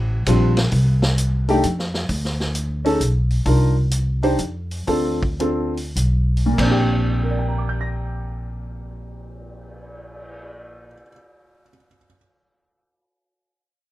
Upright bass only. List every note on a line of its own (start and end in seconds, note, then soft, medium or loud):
0.00 0.25 A1 loud
0.27 0.71 A#1 medium
0.72 1.59 C2 medium
1.64 2.06 F2 medium
2.09 2.96 D2 medium
3.00 3.43 B1 medium
3.46 4.35 C2 medium
4.39 4.85 F2 medium
4.88 5.93 D2 medium
5.96 6.54 B1 medium
6.58 10.95 A#1 medium